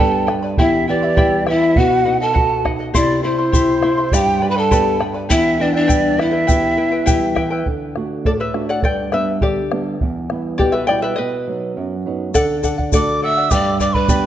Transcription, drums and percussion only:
0.28 bombo rim soft
0.58 bombo low medium
1.17 bombo low medium
1.47 bombo rim medium
1.76 bombo low medium
2.36 bombo low medium
2.65 bombo rim medium
2.65 bombo low soft
2.95 bombo low medium
2.95 shaker medium
3.53 bombo low medium
3.53 shaker medium
3.83 bombo rim soft
4.12 bombo low medium
4.12 shaker medium
4.71 bombo low medium
4.71 shaker medium
5.00 bombo rim soft
5.30 bombo low medium
5.30 shaker loud
5.89 bombo low medium
5.89 shaker medium
6.19 bombo rim soft
6.49 bombo low medium
6.49 shaker loud
7.07 bombo low medium
7.07 shaker medium
7.36 bombo rim soft
7.36 bombo low soft
7.66 bombo low medium
7.96 bombo rim soft
8.25 bombo low medium
8.54 bombo rim soft
8.83 bombo low medium
9.12 bombo rim soft
9.41 bombo low medium
9.72 bombo rim medium
10.01 bombo low medium
10.30 bombo rim soft
10.59 bombo low medium
10.89 bombo rim soft
12.35 bombo low medium
12.35 shaker medium
12.64 bombo low medium
12.64 shaker medium
12.79 bombo low medium
12.92 bombo low medium
12.92 shaker medium
13.51 bombo low medium
13.51 shaker loud
13.80 bombo low medium
13.80 shaker medium
13.94 bombo low medium
14.08 bombo low medium
14.08 shaker medium

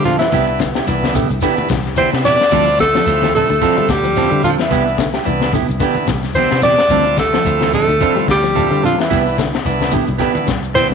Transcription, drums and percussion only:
0.04 snare soft
0.04 closed hi-hat medium
0.04 low conga medium
0.04 shekere medium
0.20 snare medium
0.20 closed hi-hat medium
0.20 shekere soft
0.32 kick medium
0.32 snare soft
0.32 closed hi-hat medium
0.32 high conga soft
0.32 shekere medium
0.47 shekere soft
0.59 kick medium
0.59 snare medium
0.59 closed hi-hat soft
0.59 high conga loud
0.59 shekere medium
0.74 snare medium
0.74 closed hi-hat medium
0.74 shekere soft
0.87 snare soft
0.87 closed hi-hat medium
0.87 high conga soft
0.87 shekere medium
1.03 snare medium
1.03 high conga medium
1.03 shekere soft
1.15 kick medium
1.15 open hi-hat medium
1.15 high conga medium
1.15 low conga medium
1.15 shekere medium
1.29 closed hi-hat soft
1.29 shekere soft
1.41 kick medium
1.41 closed hi-hat medium
1.41 high conga soft
1.41 shekere medium
1.57 high conga loud
1.57 shekere soft
1.69 kick medium
1.69 snare medium
1.69 closed hi-hat soft
1.69 low conga medium
1.69 shekere medium
1.84 snare soft
1.84 shekere soft
1.96 closed hi-hat medium
1.96 high conga medium
1.96 shekere medium
2.12 snare medium
2.12 shekere soft
2.25 snare soft
2.25 open hi-hat medium
2.25 low conga medium
2.25 shekere medium
2.40 snare medium
2.40 closed hi-hat soft
2.40 shekere soft
2.51 kick medium
2.51 closed hi-hat medium
2.51 shekere medium
2.66 shekere soft
2.78 kick medium
2.78 snare medium
2.78 closed hi-hat soft
2.78 high conga medium
2.78 shekere medium
2.94 snare medium
2.94 shekere soft
3.06 snare soft
3.06 closed hi-hat medium
3.06 high conga soft
3.06 shekere medium
3.22 snare medium
3.22 high conga medium
3.22 shekere soft
3.35 open hi-hat medium
3.35 low conga medium
3.35 shekere medium
3.50 closed hi-hat soft
3.50 shekere soft
3.62 kick medium
3.62 snare soft
3.62 closed hi-hat medium
3.62 high conga soft
3.62 shekere medium
3.77 high conga loud
3.77 shekere soft
3.89 kick medium
3.89 snare medium
3.89 closed hi-hat soft
3.89 low conga medium
3.89 shekere medium
4.04 snare soft
4.04 closed hi-hat medium
4.04 shekere soft
4.16 snare soft
4.16 closed hi-hat medium
4.16 high conga medium
4.16 low conga medium
4.16 shekere medium
4.32 shekere soft
4.43 closed hi-hat medium
4.43 high conga medium
4.43 low conga medium
4.43 shekere medium
4.59 snare medium
4.59 closed hi-hat medium
4.59 shekere soft
4.71 kick medium
4.71 closed hi-hat medium
4.71 high conga soft
4.71 shekere medium
4.88 shekere soft
4.98 kick medium
4.98 snare medium
4.98 closed hi-hat medium
4.98 high conga medium
4.98 shekere medium
5.13 snare medium
5.13 closed hi-hat medium
5.13 shekere soft
5.25 closed hi-hat medium
5.25 high conga soft
5.25 shekere medium
5.40 snare medium
5.40 high conga medium
5.40 shekere soft
5.53 kick medium
5.53 open hi-hat medium
5.53 high conga medium
5.53 low conga medium
5.53 shekere medium
5.68 closed hi-hat soft
5.68 shekere soft
5.80 kick medium
5.80 closed hi-hat medium
5.80 high conga soft
5.80 shekere medium
5.95 high conga medium
5.95 shekere soft
6.07 kick medium
6.07 snare medium
6.07 closed hi-hat medium
6.07 low conga medium
6.07 shekere medium
6.22 snare soft
6.22 shekere soft
6.34 closed hi-hat medium
6.34 high conga medium
6.34 shekere medium
6.49 snare medium
6.49 shekere soft
6.61 snare soft
6.61 open hi-hat medium
6.61 low conga medium
6.61 shekere medium
6.77 snare medium
6.77 closed hi-hat soft
6.77 shekere soft
6.89 kick loud
6.89 closed hi-hat medium
6.89 high conga soft
6.89 shekere medium
7.04 shekere soft
7.16 kick medium
7.16 snare medium
7.16 closed hi-hat soft
7.16 high conga loud
7.16 shekere medium
7.33 snare medium
7.33 shekere soft
7.45 closed hi-hat medium
7.45 high conga soft
7.45 shekere medium
7.60 snare medium
7.60 high conga medium
7.60 shekere soft
7.73 open hi-hat medium
7.73 high conga medium
7.73 low conga medium
7.73 shekere medium
7.88 closed hi-hat soft
7.88 shekere soft
8.01 kick medium
8.01 closed hi-hat medium
8.01 high conga soft
8.01 shekere medium
8.17 high conga medium
8.17 shekere soft
8.28 kick medium
8.28 snare medium
8.28 closed hi-hat medium
8.28 shekere medium
8.43 snare soft
8.43 closed hi-hat soft
8.43 shekere soft
8.56 closed hi-hat medium
8.56 high conga medium
8.56 low conga medium
8.56 shekere medium
8.74 shekere soft
8.84 closed hi-hat medium
8.84 low conga medium
8.84 shekere medium
8.99 snare medium
8.99 closed hi-hat medium
8.99 shekere soft
9.11 kick medium
9.11 snare soft
9.11 closed hi-hat medium
9.11 high conga soft
9.11 shekere medium
9.27 shekere soft
9.38 kick medium
9.38 snare medium
9.38 closed hi-hat medium
9.38 high conga medium
9.38 shekere medium
9.54 snare medium
9.54 closed hi-hat medium
9.54 shekere soft
9.65 closed hi-hat medium
9.65 high conga soft
9.65 shekere medium
9.80 snare medium
9.80 high conga medium
9.80 shekere soft
9.91 kick medium
9.91 open hi-hat medium
9.91 high conga medium
9.91 low conga medium
9.91 shekere medium
10.07 closed hi-hat soft
10.07 shekere soft
10.19 kick medium
10.19 closed hi-hat medium
10.19 high conga soft
10.19 shekere medium
10.35 high conga loud
10.35 shekere soft
10.47 kick medium
10.47 snare medium
10.47 closed hi-hat medium
10.47 low conga medium
10.47 shekere medium
10.63 shekere soft
10.75 snare soft
10.75 closed hi-hat medium
10.75 high conga medium
10.75 low conga medium
10.75 shekere medium

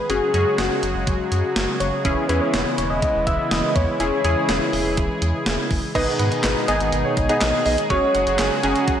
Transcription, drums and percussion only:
0.10 closed hi-hat medium
0.34 closed hi-hat medium
0.58 snare loud
0.58 closed hi-hat medium
0.83 closed hi-hat medium
1.07 kick loud
1.07 closed hi-hat medium
1.32 closed hi-hat medium
1.56 snare loud
1.56 closed hi-hat medium
1.80 closed hi-hat medium
2.05 kick loud
2.05 closed hi-hat medium
2.29 closed hi-hat medium
2.54 snare loud
2.54 closed hi-hat medium
2.78 closed hi-hat medium
3.02 kick medium
3.02 closed hi-hat medium
3.27 kick medium
3.27 closed hi-hat medium
3.51 snare loud
3.51 closed hi-hat medium
3.76 kick loud
3.76 closed hi-hat medium
4.00 closed hi-hat medium
4.24 closed hi-hat medium
4.49 snare loud
4.49 closed hi-hat medium
4.73 open hi-hat medium
4.97 kick loud
4.97 closed hi-hat medium
5.22 closed hi-hat medium
5.46 snare loud
5.46 closed hi-hat medium
5.71 kick medium
5.71 open hi-hat medium
5.95 kick loud
5.95 closed hi-hat medium
5.95 crash medium
6.19 closed hi-hat medium
6.32 closed hi-hat medium
6.44 snare loud
6.44 clap medium
6.44 closed hi-hat medium
6.68 closed hi-hat medium
6.80 closed hi-hat soft
6.92 closed hi-hat medium
7.17 kick medium
7.17 closed hi-hat medium
7.29 closed hi-hat medium
7.41 snare loud
7.41 clap loud
7.41 closed hi-hat medium
7.66 open hi-hat medium
7.78 closed hi-hat medium
7.90 kick loud
7.90 closed hi-hat medium
8.15 closed hi-hat medium
8.27 closed hi-hat medium
8.39 snare loud
8.39 clap medium
8.39 closed hi-hat medium
8.63 closed hi-hat medium
8.76 closed hi-hat soft
8.88 kick loud
8.88 closed hi-hat medium

